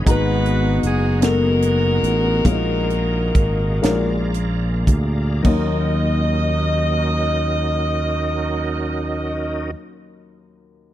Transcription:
Already playing: G#4
0.06 G#1 G#2 G#3 A#3 B3 D#4 F#4 F#5 A#5, kick, closed hi-hat
0.10 B3 B4
0.46 closed hi-hat
0.83 F#1 G#4, closed hi-hat
1.21 G#3 B3 D#4 F#4 A4 A#4, snare, closed hi-hat
1.29 A#4
1.62 closed hi-hat
2.03 A1, closed hi-hat
2.45 A#1 A#2 G#3 A#3 C#4 A#4 D#5 F5, kick, closed hi-hat
2.52 D#4
2.90 closed hi-hat
3.35 G#1, kick, closed hi-hat
3.82 A#1 A#2 G#3 A#3 C#4 G#4 A#4 D5 F5 A#5, snare, closed hi-hat
3.89 D5
4.34 closed hi-hat
4.87 D2, kick, closed hi-hat
5.42 D#2 F#3 A#3 C#4 D#4 F#4 A#4 D#5, kick, crash
5.47 D#4 A#4

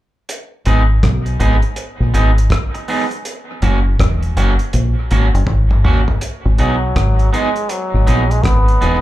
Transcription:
0.29 closed hi-hat
0.65 G#1 B3 D#4 G#4, closed hi-hat
1.03 B1, kick, cross-stick, closed hi-hat
1.26 closed hi-hat
1.40 G#1 B3 D#4 G#4, closed hi-hat
1.62 closed hi-hat
1.76 closed hi-hat
2.00 A#1
2.14 G#1 B3 D#4 G#4, closed hi-hat
2.38 closed hi-hat
2.50 kick, cross-stick, closed hi-hat
2.74 muted clean electric guitar stroke, closed hi-hat
2.88 B3 D#4 G#4, open hi-hat
3.11 closed hi-hat
3.25 closed hi-hat
3.62 F#1 A#3 C#4 F#4, closed hi-hat
4.00 E1, kick, cross-stick, closed hi-hat
4.22 closed hi-hat
4.37 F#1 A#3 C#4 F#4, closed hi-hat
4.59 closed hi-hat
4.73 A#1, closed hi-hat
5.11 G#1 A#3 C#4 F#4, closed hi-hat
5.34 F#1, closed hi-hat
5.47 G#1, kick, high tom
5.71 mid tom
5.84 A#3 C#4 F#4, mid tom
6.08 floor tom
6.21 closed hi-hat
6.45 G#1
6.58 B1 F#3 B3 D#4 G#4, closed hi-hat
6.96 G#1, kick, cross-stick, closed hi-hat
7.19 closed hi-hat
7.33 G#3 B3 D#4 G#4, closed hi-hat
7.56 closed hi-hat
7.69 F#3, closed hi-hat
7.94 G#1
8.07 A#1 B3 D#4 G#4, closed hi-hat
8.31 G#3, closed hi-hat
8.44 G#1 B3, kick, cross-stick, closed hi-hat
8.68 closed hi-hat
8.81 E1 B3 D#4 G#4, closed hi-hat

